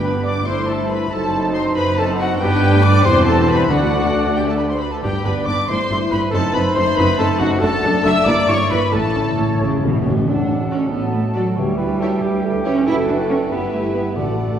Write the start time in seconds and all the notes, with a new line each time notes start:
Already playing: G1 G2 B3 D4 B4
0.02 B3 D4 B4 B5
0.23 D5 D6
0.45 G1 G2 A3 E4 C5 C6
0.66 A3 E4 A4 A5
0.88 B4 B5
1.10 F#1 F#2 F#3 D#4 A4 C5 A5
1.33 C4 D#4
1.53 C5 C6
1.75 F#1 F#2 B4 B5
1.96 C4 D#4 A4 A5
2.16 F#4 F#5
2.21 F#4
2.39 G1 G2 G3 B3 D4 G4 B4 G5
2.72 A3
2.83 D5 D6
3.04 E1 E2 G3 C4 E4 C5 C6
3.25 A4 A5
3.48 B4 B5
3.69 D2 D3 A3 D4 F#4 D5 F#5
4.37 G4 G5
4.47 A4 A5
4.58 B4 B5
4.70 C5 C6
4.79 B4 B5
4.91 A4 A5
5.02 G1 G2 B3 D4 G4 D5 G5
5.24 G1 G2 B3 D4 B4 B5
5.45 G1 G2 B3 D4 D5 D6
5.67 G1 G2 A3 E4 C5 C6
5.90 G1 G2 A3 E4
6.11 G1 G2 A3 E4 B4 B5
6.30 F#1 F#2 C4 D#4 A4 A5
6.34 A5
6.53 F#1 F#2 C4 D#4 B4 B5
6.75 F#1 F#2 C4 D#4 C5 C6
6.97 F#1 F#2 C4 D#4 B4 B5
7.18 F#1 F#2 C4 D#4 A4 A5
7.39 F#1 F#2 C4 D#4 F#4 F#5
7.59 F#1 F#2 A3 D4 A4 D5 A5
7.83 F#1 F#2 A3 D4
8.04 F#1 F#2 A3 D4 E5 E6
8.24 G1 G2 A#3 E4 D5 D6
8.48 G1 G2 A#3 E4 C#5 C#6
8.70 G1 G2 A#3 E4 B4 B5
8.91 A1 A2 A3 C#4 A4 C#5 A5
9.00 A2
9.09 A2
9.15 A1 A2 A3 C#4
9.24 A2
9.32 A2
9.38 A1 A2 A3 C#4
9.48 A2
9.55 A2
9.60 A1 A2 C#3 A3 C#4
9.71 A2
9.79 A2 A3 C#4
9.83 A1 A2 B2
9.94 A2
10.02 A2 A3 C#4
10.07 A1 A2
10.17 A2
10.27 D2 F#3 D4 A4 F#5
10.70 C#4 F#4 A4 D5
10.92 A1 B3 F#4 A5
11.14 A3
11.34 F#3 F#4 A4 D5
11.56 D2 D3 E3 G3 G4 C#5 G5
11.77 E4 B4
11.99 E4 F#4 G4 A4 C#5
12.21 D2 G4
12.44 A4
12.64 C#4 E4 G4 B4 C#5
12.86 F#1 E4 F#4 A4 D5
13.08 D4
13.29 C#4
13.50 G1 B3 E4 G4 B4 E5
13.73 A3
13.94 B3
14.16 A1 A2 D3 A3 F#4 A4 D5 F#5